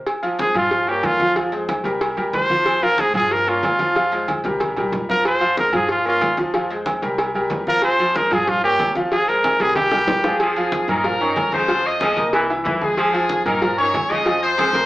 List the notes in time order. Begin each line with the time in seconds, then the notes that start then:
0.07 cowbell, high conga, low agogo
0.23 F3 F4 F5, high conga, low agogo
0.39 G#3 G#4 C5, cowbell, high conga, low timbale
0.54 G2 F3 F4 F5, high conga, low conga, low agogo
0.71 cowbell, high conga
0.87 A#3 G4 A#4 C#5, high conga, low agogo
1.03 F2 F4, cowbell, high conga, low timbale, low agogo
1.20 F3 F4 F5, cowbell, high conga
1.36 F3 F4 F5, cowbell, high conga, low agogo
1.52 G#3 G#4 C5, high conga, low agogo
1.69 cowbell, high conga, low timbale, low agogo
1.84 C2 G3 G4 A#4, cowbell, high conga
2.01 cowbell, high conga, low agogo
2.17 E2 G3 G4 A#4, high conga, low agogo
2.33 F2 C5, cowbell, high conga, low timbale
2.50 F3 F4 F5, high conga
2.66 cowbell, high conga, low agogo
2.82 F3 F4 A#4 F5, high conga, low agogo
2.98 G#3 G#4 C5, cowbell, high conga, low timbale
3.14 G2 F3 F4 G#4 F5, high conga, low conga, low agogo
3.31 A#4, cowbell
3.47 A#3 F4 A#4 C#5, high conga, low agogo
3.63 F2, cowbell, high conga, low timbale, low agogo
3.79 F3 F4 F5, cowbell, high conga
3.95 F3 F4 F5, cowbell, high conga, low agogo
4.12 G#3 G#4 C5, high conga, low agogo
4.28 cowbell, high conga, low timbale, low agogo
4.44 C2 G3 G4 A#4, cowbell, high conga
4.60 cowbell, high conga, low agogo
4.76 G3 G4 A#4, low conga, low agogo
4.92 F2, cowbell, low conga, low timbale
5.09 F3 F4 A#4 F5, low conga
5.25 C5, cowbell, high conga, low agogo
5.40 F3 F4 F5, high conga, low agogo
5.57 G#3 G#4 A#4 C5, cowbell, high conga, low timbale
5.73 G2 F3 F4 G#4 F5, high conga, low conga, low agogo
5.89 F4, cowbell
6.05 A#3 F4 A#4 C#5, high conga, low agogo
6.21 F2, cowbell, high conga, low timbale, low agogo
6.37 F3 F4 F5, cowbell, high conga
6.54 F3 F4 F5, cowbell, high conga, low agogo
6.70 G#3 G#4 C5, high conga, low agogo
6.86 cowbell, high conga, low timbale, low agogo
7.02 C2 G3 G4 A#4, cowbell, high conga
7.18 cowbell, high conga, low agogo
7.34 G3 G4 A#4, high conga, low agogo
7.50 F2, cowbell, high conga, low timbale
7.67 F3 F4 A#4 F5, high conga
7.82 C5, cowbell, high conga, low agogo
7.99 F3 F4 F5, high conga, low agogo
8.15 G#3 G#4 A#4 C5, cowbell, high conga, low timbale
8.31 G2 F3 F4 G#4 F5, high conga, low conga, low agogo
8.47 F4, cowbell, high conga, low conga
8.64 A#3 G4 A#4 C#5, high conga, low agogo
8.79 F2, cowbell, high conga, low timbale, low agogo
8.95 F3 F4 F5, cowbell, high conga
9.12 F3 F4 G#4 F5, cowbell, high conga, low agogo
9.28 G#3 G#4 A#4 C5, high conga, low agogo
9.44 cowbell, high conga, high timbale, low agogo
9.60 C2 G3 G4 G#4 A#4, cowbell, high conga, high timbale
9.76 G4, cowbell, high conga, high timbale, low agogo
9.92 G3 G4 A#4, high bongo, low agogo
10.07 F2, cowbell, low bongo, low conga, low timbale
10.24 F3 F4 G#4 F5 G#5, low bongo, low conga, low timbale
10.40 F3, cowbell, high conga, low agogo
10.56 F3 F4 F5, high conga, low agogo
10.72 cowbell, high conga, low timbale
10.88 G2 D#3 A#3 A#4 A#5, high conga, low conga, low agogo
11.04 F3 F4 F5, cowbell, high conga, low conga
11.20 D#3 C#4 C#5 C#6, high conga, low agogo
11.36 F2, cowbell, high conga, low timbale, low agogo
11.52 C#3 G#3 G#4 C5 G#5 C6, cowbell, high conga
11.68 F3 F4 F5, cowbell, high conga, low agogo
11.85 D#5 D#6, high conga, low agogo
12.00 F3 G#3 G#4 G#5, cowbell, high conga, low timbale, low agogo
12.17 C2 A#3 A#4 A#5, cowbell, high conga
12.33 E3, cowbell, high conga, low agogo
12.50 E3 E4 E5, high conga, low agogo
12.64 F2 E3, cowbell, high conga, low timbale
12.82 G#3 G#4 G#5, high conga
12.97 F3, cowbell, high conga, low agogo
13.13 F3 F4 F5, high conga, low agogo
13.29 cowbell, high conga, low timbale
13.46 G2 D#3 A#3 A#4 A#5, high conga, low conga, low agogo
13.61 F3 F4 F5, cowbell, high conga, low conga
13.77 D#3 C#4 C#5 C#6, high conga, low agogo
13.94 F2, cowbell, high conga, low timbale, low agogo
14.09 C#3 G#3 G#4 D#5 G#5 D#6, cowbell, high conga
14.25 F3 F4 F5, cowbell, high conga, low agogo
14.43 C5 C6, high conga, low agogo
14.58 F3 G#3 G#4 G#5, cowbell, high conga, high timbale, low agogo
14.73 C2 A#3 A#4 A#5, cowbell, high conga, high timbale